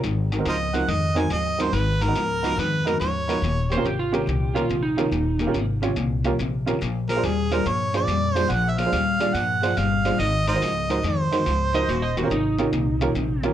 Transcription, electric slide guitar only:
0, 0, Header, 1, 2, 480
1, 0, Start_track
1, 0, Tempo, 423131
1, 45, Time_signature, 4, 2, 24, 8
1, 15353, End_track
2, 0, Start_track
2, 0, Title_t, "Electric slide guitar"
2, 0, Program_c, 0, 29
2, 4218, Note_on_c, 0, 72, 85
2, 4368, Note_off_c, 0, 72, 0
2, 4371, Note_on_c, 0, 67, 70
2, 4525, Note_off_c, 0, 67, 0
2, 4529, Note_on_c, 0, 65, 84
2, 4683, Note_off_c, 0, 65, 0
2, 4687, Note_on_c, 0, 67, 64
2, 5153, Note_off_c, 0, 67, 0
2, 5163, Note_on_c, 0, 65, 74
2, 5474, Note_on_c, 0, 63, 77
2, 5475, Note_off_c, 0, 65, 0
2, 6411, Note_off_c, 0, 63, 0
2, 13329, Note_on_c, 0, 75, 97
2, 13481, Note_off_c, 0, 75, 0
2, 13496, Note_on_c, 0, 66, 77
2, 13638, Note_on_c, 0, 75, 86
2, 13644, Note_off_c, 0, 66, 0
2, 13795, Note_off_c, 0, 75, 0
2, 13816, Note_on_c, 0, 66, 87
2, 13963, Note_off_c, 0, 66, 0
2, 13968, Note_on_c, 0, 63, 83
2, 15283, Note_off_c, 0, 63, 0
2, 15353, End_track
0, 0, End_of_file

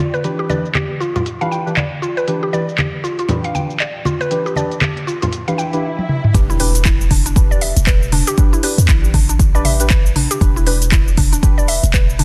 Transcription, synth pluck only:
0, 0, Header, 1, 2, 480
1, 0, Start_track
1, 0, Tempo, 508475
1, 228, Time_signature, 4, 2, 24, 8
1, 11556, End_track
2, 0, Start_track
2, 0, Title_t, "Synth pluck"
2, 0, Program_c, 0, 84
2, 0, Note_on_c, 0, 65, 73
2, 123, Note_off_c, 0, 65, 0
2, 130, Note_on_c, 0, 71, 95
2, 218, Note_off_c, 0, 71, 0
2, 369, Note_on_c, 0, 67, 74
2, 457, Note_off_c, 0, 67, 0
2, 468, Note_on_c, 0, 74, 74
2, 596, Note_off_c, 0, 74, 0
2, 708, Note_on_c, 0, 67, 85
2, 843, Note_off_c, 0, 67, 0
2, 948, Note_on_c, 0, 65, 73
2, 1084, Note_off_c, 0, 65, 0
2, 1093, Note_on_c, 0, 65, 75
2, 1179, Note_off_c, 0, 65, 0
2, 1332, Note_on_c, 0, 77, 72
2, 1419, Note_off_c, 0, 77, 0
2, 1430, Note_on_c, 0, 79, 71
2, 1557, Note_off_c, 0, 79, 0
2, 1668, Note_on_c, 0, 74, 76
2, 1804, Note_off_c, 0, 74, 0
2, 1908, Note_on_c, 0, 65, 71
2, 2044, Note_off_c, 0, 65, 0
2, 2050, Note_on_c, 0, 71, 99
2, 2138, Note_off_c, 0, 71, 0
2, 2292, Note_on_c, 0, 67, 72
2, 2379, Note_off_c, 0, 67, 0
2, 2389, Note_on_c, 0, 74, 79
2, 2517, Note_off_c, 0, 74, 0
2, 2629, Note_on_c, 0, 67, 79
2, 2764, Note_off_c, 0, 67, 0
2, 2867, Note_on_c, 0, 65, 73
2, 3003, Note_off_c, 0, 65, 0
2, 3013, Note_on_c, 0, 65, 70
2, 3099, Note_off_c, 0, 65, 0
2, 3252, Note_on_c, 0, 77, 71
2, 3339, Note_off_c, 0, 77, 0
2, 3349, Note_on_c, 0, 79, 71
2, 3477, Note_off_c, 0, 79, 0
2, 3589, Note_on_c, 0, 74, 81
2, 3724, Note_off_c, 0, 74, 0
2, 3827, Note_on_c, 0, 65, 77
2, 3963, Note_off_c, 0, 65, 0
2, 3971, Note_on_c, 0, 71, 98
2, 4058, Note_off_c, 0, 71, 0
2, 4211, Note_on_c, 0, 67, 80
2, 4299, Note_off_c, 0, 67, 0
2, 4309, Note_on_c, 0, 74, 72
2, 4437, Note_off_c, 0, 74, 0
2, 4548, Note_on_c, 0, 67, 83
2, 4683, Note_off_c, 0, 67, 0
2, 4788, Note_on_c, 0, 65, 73
2, 4918, Note_off_c, 0, 65, 0
2, 4930, Note_on_c, 0, 65, 77
2, 5018, Note_off_c, 0, 65, 0
2, 5171, Note_on_c, 0, 77, 75
2, 5258, Note_off_c, 0, 77, 0
2, 5268, Note_on_c, 0, 79, 74
2, 5396, Note_off_c, 0, 79, 0
2, 6133, Note_on_c, 0, 64, 82
2, 6219, Note_off_c, 0, 64, 0
2, 6229, Note_on_c, 0, 71, 79
2, 6357, Note_off_c, 0, 71, 0
2, 6469, Note_on_c, 0, 64, 85
2, 6604, Note_off_c, 0, 64, 0
2, 6708, Note_on_c, 0, 62, 77
2, 6840, Note_off_c, 0, 62, 0
2, 6852, Note_on_c, 0, 62, 77
2, 6939, Note_off_c, 0, 62, 0
2, 7091, Note_on_c, 0, 74, 79
2, 7178, Note_off_c, 0, 74, 0
2, 7189, Note_on_c, 0, 76, 77
2, 7317, Note_off_c, 0, 76, 0
2, 7429, Note_on_c, 0, 71, 77
2, 7564, Note_off_c, 0, 71, 0
2, 7669, Note_on_c, 0, 62, 78
2, 7804, Note_off_c, 0, 62, 0
2, 7811, Note_on_c, 0, 67, 112
2, 7898, Note_off_c, 0, 67, 0
2, 8052, Note_on_c, 0, 64, 78
2, 8139, Note_off_c, 0, 64, 0
2, 8151, Note_on_c, 0, 71, 82
2, 8278, Note_off_c, 0, 71, 0
2, 8389, Note_on_c, 0, 64, 83
2, 8524, Note_off_c, 0, 64, 0
2, 8629, Note_on_c, 0, 62, 79
2, 8761, Note_off_c, 0, 62, 0
2, 8772, Note_on_c, 0, 62, 76
2, 8859, Note_off_c, 0, 62, 0
2, 9013, Note_on_c, 0, 74, 79
2, 9099, Note_off_c, 0, 74, 0
2, 9108, Note_on_c, 0, 76, 76
2, 9236, Note_off_c, 0, 76, 0
2, 9349, Note_on_c, 0, 71, 82
2, 9484, Note_off_c, 0, 71, 0
2, 9588, Note_on_c, 0, 62, 75
2, 9724, Note_off_c, 0, 62, 0
2, 9730, Note_on_c, 0, 67, 104
2, 9818, Note_off_c, 0, 67, 0
2, 9971, Note_on_c, 0, 64, 80
2, 10059, Note_off_c, 0, 64, 0
2, 10069, Note_on_c, 0, 71, 81
2, 10197, Note_off_c, 0, 71, 0
2, 10309, Note_on_c, 0, 64, 91
2, 10444, Note_off_c, 0, 64, 0
2, 10548, Note_on_c, 0, 62, 80
2, 10679, Note_off_c, 0, 62, 0
2, 10690, Note_on_c, 0, 62, 75
2, 10778, Note_off_c, 0, 62, 0
2, 10929, Note_on_c, 0, 74, 79
2, 11017, Note_off_c, 0, 74, 0
2, 11027, Note_on_c, 0, 76, 75
2, 11156, Note_off_c, 0, 76, 0
2, 11268, Note_on_c, 0, 71, 81
2, 11403, Note_off_c, 0, 71, 0
2, 11508, Note_on_c, 0, 62, 79
2, 11556, Note_off_c, 0, 62, 0
2, 11556, End_track
0, 0, End_of_file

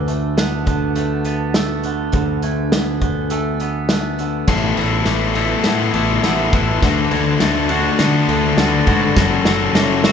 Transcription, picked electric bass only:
0, 0, Header, 1, 2, 480
1, 0, Start_track
1, 0, Tempo, 585366
1, 1752, Time_signature, 4, 2, 24, 8
1, 8300, End_track
2, 0, Start_track
2, 0, Title_t, "Picked electric bass"
2, 0, Program_c, 0, 34
2, 0, Note_on_c, 0, 38, 70
2, 1717, Note_off_c, 0, 38, 0
2, 1748, Note_on_c, 0, 38, 66
2, 3637, Note_off_c, 0, 38, 0
2, 3671, Note_on_c, 0, 33, 82
2, 3865, Note_off_c, 0, 33, 0
2, 3913, Note_on_c, 0, 33, 70
2, 4106, Note_off_c, 0, 33, 0
2, 4152, Note_on_c, 0, 33, 72
2, 4539, Note_off_c, 0, 33, 0
2, 4638, Note_on_c, 0, 45, 73
2, 4829, Note_off_c, 0, 45, 0
2, 4872, Note_on_c, 0, 33, 80
2, 5065, Note_off_c, 0, 33, 0
2, 5115, Note_on_c, 0, 33, 76
2, 5308, Note_off_c, 0, 33, 0
2, 5355, Note_on_c, 0, 33, 82
2, 5547, Note_off_c, 0, 33, 0
2, 5593, Note_on_c, 0, 38, 82
2, 5786, Note_off_c, 0, 38, 0
2, 5835, Note_on_c, 0, 38, 69
2, 6027, Note_off_c, 0, 38, 0
2, 6078, Note_on_c, 0, 38, 73
2, 6463, Note_off_c, 0, 38, 0
2, 6559, Note_on_c, 0, 50, 83
2, 6750, Note_off_c, 0, 50, 0
2, 6790, Note_on_c, 0, 38, 83
2, 6985, Note_off_c, 0, 38, 0
2, 7025, Note_on_c, 0, 38, 74
2, 7222, Note_off_c, 0, 38, 0
2, 7278, Note_on_c, 0, 44, 70
2, 7470, Note_off_c, 0, 44, 0
2, 7516, Note_on_c, 0, 30, 81
2, 7709, Note_off_c, 0, 30, 0
2, 7746, Note_on_c, 0, 30, 84
2, 7942, Note_off_c, 0, 30, 0
2, 7980, Note_on_c, 0, 30, 80
2, 8300, Note_off_c, 0, 30, 0
2, 8300, End_track
0, 0, End_of_file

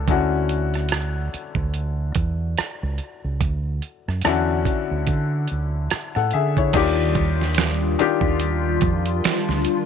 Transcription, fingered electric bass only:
0, 0, Header, 1, 3, 480
1, 0, Start_track
1, 0, Key_signature, -3, "major"
1, 0, Tempo, 833333
1, 41, Time_signature, 4, 2, 24, 8
1, 5676, End_track
2, 0, Start_track
2, 0, Title_t, "Fingered electric bass"
2, 0, Program_c, 0, 33
2, 49, Note_on_c, 0, 38, 88
2, 742, Note_off_c, 0, 38, 0
2, 899, Note_on_c, 0, 38, 91
2, 1218, Note_off_c, 0, 38, 0
2, 1248, Note_on_c, 0, 40, 82
2, 1465, Note_off_c, 0, 40, 0
2, 1630, Note_on_c, 0, 37, 84
2, 1718, Note_off_c, 0, 37, 0
2, 1868, Note_on_c, 0, 37, 73
2, 1958, Note_off_c, 0, 37, 0
2, 1967, Note_on_c, 0, 38, 74
2, 2185, Note_off_c, 0, 38, 0
2, 2350, Note_on_c, 0, 42, 74
2, 2439, Note_off_c, 0, 42, 0
2, 2453, Note_on_c, 0, 40, 76
2, 2668, Note_off_c, 0, 40, 0
2, 2829, Note_on_c, 0, 38, 81
2, 2918, Note_off_c, 0, 38, 0
2, 2928, Note_on_c, 0, 50, 91
2, 3145, Note_off_c, 0, 50, 0
2, 3176, Note_on_c, 0, 38, 74
2, 3390, Note_off_c, 0, 38, 0
2, 3549, Note_on_c, 0, 45, 83
2, 3638, Note_off_c, 0, 45, 0
2, 3652, Note_on_c, 0, 50, 92
2, 3868, Note_off_c, 0, 50, 0
2, 3885, Note_on_c, 0, 39, 102
2, 4580, Note_off_c, 0, 39, 0
2, 4735, Note_on_c, 0, 39, 84
2, 5056, Note_off_c, 0, 39, 0
2, 5085, Note_on_c, 0, 41, 95
2, 5304, Note_off_c, 0, 41, 0
2, 5465, Note_on_c, 0, 38, 79
2, 5556, Note_off_c, 0, 38, 0
2, 5676, End_track
3, 0, Start_track
3, 0, Title_t, "Muted fingered electric bass strokes"
3, 772, Note_on_c, 9, 29, 39
3, 830, Note_off_c, 9, 29, 0
3, 1492, Note_on_c, 9, 29, 37
3, 1549, Note_off_c, 9, 29, 0
3, 3414, Note_on_c, 9, 29, 38
3, 3472, Note_off_c, 9, 29, 0
3, 5330, Note_on_c, 9, 29, 45
3, 5388, Note_off_c, 9, 29, 0
3, 5676, End_track
0, 0, End_of_file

